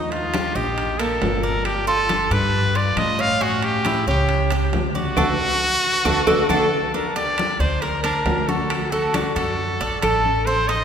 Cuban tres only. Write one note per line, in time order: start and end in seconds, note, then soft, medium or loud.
0.00 0.32 D#4 medium
0.34 0.55 G4 medium
0.55 0.98 D#5 medium
1.00 1.42 A#3 medium
1.43 1.86 D5 medium
1.87 2.09 F4 medium
2.09 2.31 D4 medium
2.31 2.74 G4 medium
2.75 3.18 F4 medium
3.19 3.40 C#5 medium
3.41 3.84 C#4 medium
3.86 4.07 E4 medium
4.08 4.50 C#5 medium
4.52 4.94 G4 medium
4.95 5.17 D5 medium
5.17 5.32 D4 loud
5.17 5.32 F#4 medium
5.17 5.32 A4 medium
6.05 6.20 D4 loud
6.05 6.20 F#4 medium
6.05 6.20 A4 medium
6.27 6.41 D4 medium
6.27 6.42 F#4 medium
6.27 6.42 A4 loud
6.50 6.64 D4 loud
6.50 6.64 F#4 loud
6.50 6.64 A4 medium
6.94 7.15 D4 medium
7.16 7.59 G4 medium
7.60 7.81 D5 medium
7.82 8.04 A#4 medium
8.04 8.47 D4 medium
8.49 8.91 F#4 medium
8.92 9.14 A4 medium
9.14 9.36 D4 medium
9.36 9.79 F#4 medium
9.81 10.02 D5 medium
10.03 10.46 A4 medium
10.47 10.69 C4 medium
10.69 10.84 D#4 medium